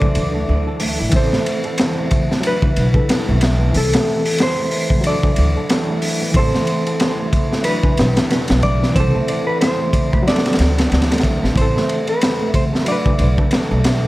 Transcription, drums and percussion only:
0.02 kick
0.15 ride
0.80 open hi-hat
1.12 kick, ride
1.33 snare
1.46 ride
1.64 ride
1.78 snare, ride
2.11 kick, ride
2.31 snare
2.43 ride
2.62 kick
2.76 ride
2.94 kick
3.09 snare, ride
3.41 snare, ride
3.74 open hi-hat
3.93 snare, ride
4.26 open hi-hat
4.38 snare, ride
4.71 open hi-hat
4.90 kick
5.04 ride
5.23 kick
5.36 ride
5.69 snare, ride
6.02 open hi-hat
6.34 kick, ride
6.55 snare
6.67 ride
6.87 ride
7.00 snare, ride
7.33 kick, ride
7.53 snare
7.64 ride
7.83 kick
7.97 snare, ride
8.17 snare, ride
8.30 snare, ride
8.48 snare, ride
8.63 kick, ride
8.83 snare
8.96 kick, ride
9.28 ride
9.61 snare, ride
9.93 kick, ride
10.13 kick
10.28 snare, ride
10.36 snare, ride
10.46 snare, ride
10.53 snare, ride
10.59 snare, ride
10.78 snare, ride
10.92 snare, ride
11.02 snare, ride
11.12 snare, ride
11.18 snare, ride
11.23 kick, ride
11.44 snare
11.56 kick, ride
11.77 snare
11.89 ride
12.07 ride
12.21 snare, ride
12.54 kick, ride
12.75 snare
12.86 ride
13.06 kick
13.19 ride
13.38 kick
13.51 snare, ride
13.84 snare, ride

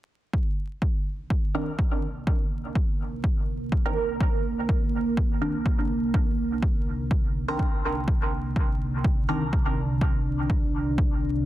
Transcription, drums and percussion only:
0.33 kick
0.82 kick
1.30 kick
1.79 kick
2.27 kick
2.75 kick
3.24 kick
3.72 kick
4.21 kick
4.69 kick
5.17 kick
5.66 kick
6.14 kick
6.62 kick
7.11 kick
7.59 kick
8.08 kick
8.56 kick
9.04 kick
9.53 kick
10.01 kick
10.50 kick
10.98 kick

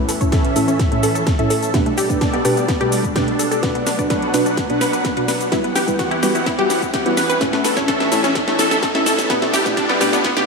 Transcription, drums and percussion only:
0.09 open hi-hat, shaker
0.21 kick, closed hi-hat, shaker
0.32 kick, snare, closed hi-hat, shaker
0.44 closed hi-hat
0.56 open hi-hat, shaker
0.68 closed hi-hat, shaker
0.80 kick, snare, closed hi-hat, shaker
0.92 closed hi-hat
1.03 open hi-hat, shaker
1.15 closed hi-hat, shaker
1.27 kick, snare, closed hi-hat, shaker
1.39 closed hi-hat
1.50 open hi-hat, shaker
1.63 closed hi-hat, shaker
1.74 kick, snare, closed hi-hat, shaker
1.86 closed hi-hat
1.98 open hi-hat, shaker
2.10 kick, closed hi-hat, shaker
2.21 kick, snare, closed hi-hat, shaker
2.33 closed hi-hat
2.45 open hi-hat, shaker
2.57 closed hi-hat, shaker
2.68 kick, snare, closed hi-hat, shaker
2.81 closed hi-hat
2.92 open hi-hat, shaker
3.04 kick, closed hi-hat, shaker
3.16 kick, snare, closed hi-hat, shaker
3.28 closed hi-hat
3.39 open hi-hat, shaker
3.52 closed hi-hat, shaker
3.63 kick, snare, closed hi-hat, shaker
3.75 closed hi-hat
3.87 snare, open hi-hat, shaker
3.99 kick, closed hi-hat, shaker
4.10 kick, snare, closed hi-hat, shaker
4.22 closed hi-hat
4.34 snare, open hi-hat, shaker
4.46 closed hi-hat, shaker
4.57 kick, snare, closed hi-hat, shaker
4.70 closed hi-hat
4.81 snare, open hi-hat, shaker
4.93 closed hi-hat, shaker
5.05 kick, snare, closed hi-hat, shaker
5.17 closed hi-hat
5.28 snare, open hi-hat, shaker
5.41 closed hi-hat, shaker
5.52 kick, snare, closed hi-hat, shaker
5.64 closed hi-hat
5.76 snare, open hi-hat, shaker
5.88 kick, closed hi-hat, shaker
5.99 kick, snare, closed hi-hat, shaker
6.11 closed hi-hat
6.23 snare, open hi-hat, shaker
6.35 closed hi-hat, shaker
6.46 kick, snare, closed hi-hat, shaker
6.59 closed hi-hat
6.70 snare, open hi-hat, shaker
6.82 kick, closed hi-hat, shaker
6.94 kick, snare, closed hi-hat, shaker
7.06 closed hi-hat
7.17 snare, open hi-hat, shaker
7.30 closed hi-hat, shaker
7.41 kick, snare, closed hi-hat, shaker
7.53 snare, closed hi-hat
7.64 snare, open hi-hat, shaker
7.77 kick, snare, closed hi-hat, shaker
7.88 kick, snare, closed hi-hat, shaker
8.00 snare, closed hi-hat
8.12 snare, open hi-hat, shaker
8.24 snare, closed hi-hat, shaker
8.35 kick, snare, closed hi-hat, shaker
8.48 snare, closed hi-hat
8.59 snare, open hi-hat, shaker
8.71 snare, closed hi-hat, shaker
8.83 kick, snare, closed hi-hat, shaker
8.95 snare, closed hi-hat
9.06 snare, open hi-hat, shaker
9.19 snare, closed hi-hat, shaker
9.30 kick, snare, closed hi-hat, shaker
9.42 snare, closed hi-hat
9.54 snare, open hi-hat, shaker
9.66 kick, snare, closed hi-hat, shaker
9.77 kick, snare, closed hi-hat, shaker
9.89 snare, closed hi-hat
10.01 snare, open hi-hat, shaker
10.13 snare, closed hi-hat, shaker
10.24 kick, snare, closed hi-hat, shaker
10.37 snare, closed hi-hat

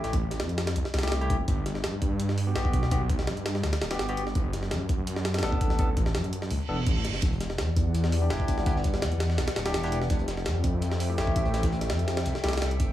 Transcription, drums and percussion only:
0.04 snare, closed hi-hat
0.13 kick, closed hi-hat
0.31 snare, closed hi-hat
0.40 snare, closed hi-hat
0.49 closed hi-hat
0.58 snare, closed hi-hat
0.67 snare, closed hi-hat
0.76 closed hi-hat
0.85 snare
0.94 snare, closed hi-hat
0.99 snare, closed hi-hat
1.03 snare, closed hi-hat
1.08 snare, closed hi-hat
1.12 snare, closed hi-hat
1.21 closed hi-hat
1.30 kick, closed hi-hat
1.48 kick, closed hi-hat
1.66 snare, closed hi-hat
1.75 snare
1.84 snare, closed hi-hat
2.02 kick, closed hi-hat
2.20 closed hi-hat
2.29 snare
2.38 open hi-hat
2.56 snare, closed hi-hat
2.65 kick
2.73 kick, closed hi-hat
2.83 snare
2.91 kick, closed hi-hat
3.10 kick, closed hi-hat
3.19 snare
3.27 snare, closed hi-hat
3.37 closed hi-hat
3.46 snare, closed hi-hat
3.55 snare
3.63 snare, closed hi-hat
3.73 snare, closed hi-hat
3.82 snare, closed hi-hat
3.91 snare, closed hi-hat
3.99 snare, closed hi-hat
4.09 closed hi-hat
4.17 closed hi-hat
4.27 snare
4.35 kick, closed hi-hat
4.53 snare, closed hi-hat
4.63 snare
4.71 snare, closed hi-hat
4.89 kick, closed hi-hat
5.07 closed hi-hat
5.16 snare
5.25 snare, closed hi-hat
5.34 snare, closed hi-hat
5.38 snare, closed hi-hat
5.43 snare, closed hi-hat
5.52 kick
5.61 kick, closed hi-hat
5.70 snare
5.79 kick, closed hi-hat
5.97 kick, closed hi-hat
6.06 snare
6.15 snare, closed hi-hat
6.24 closed hi-hat
6.33 closed hi-hat
6.42 snare
6.51 open hi-hat
6.87 kick, closed hi-hat
7.05 snare, closed hi-hat
7.14 snare
7.22 kick, closed hi-hat
7.33 closed hi-hat
7.41 snare, closed hi-hat
7.50 snare
7.58 snare, closed hi-hat
7.77 kick, closed hi-hat
7.94 closed hi-hat
8.03 snare
8.12 closed hi-hat, open hi-hat
8.30 snare, closed hi-hat
8.40 kick
8.48 kick, closed hi-hat
8.58 snare, closed hi-hat
8.66 kick, closed hi-hat
8.76 snare
8.84 kick, closed hi-hat
8.94 snare
9.02 snare, closed hi-hat
9.12 closed hi-hat
9.20 snare, closed hi-hat
9.30 snare
9.38 snare, closed hi-hat
9.48 snare, closed hi-hat
9.56 snare, closed hi-hat
9.66 snare, closed hi-hat
9.74 snare, closed hi-hat
9.83 snare, closed hi-hat
9.92 closed hi-hat
10.02 snare
10.10 kick, closed hi-hat
10.19 closed hi-hat
10.28 snare, closed hi-hat
10.37 snare
10.45 snare, closed hi-hat
10.64 kick, closed hi-hat
10.82 closed hi-hat
10.91 snare
11.00 closed hi-hat, open hi-hat
11.18 snare, closed hi-hat
11.27 kick
11.36 kick, closed hi-hat
11.45 closed hi-hat
11.54 snare, closed hi-hat
11.63 kick, snare, closed hi-hat
11.72 closed hi-hat
11.81 snare, closed hi-hat
11.90 snare, closed hi-hat
11.99 closed hi-hat
12.08 snare, closed hi-hat
12.17 snare, closed hi-hat
12.25 closed hi-hat
12.35 snare
12.44 snare, closed hi-hat
12.48 snare, closed hi-hat
12.53 snare, closed hi-hat
12.57 snare, closed hi-hat
12.62 snare, closed hi-hat
12.71 closed hi-hat
12.80 kick, closed hi-hat

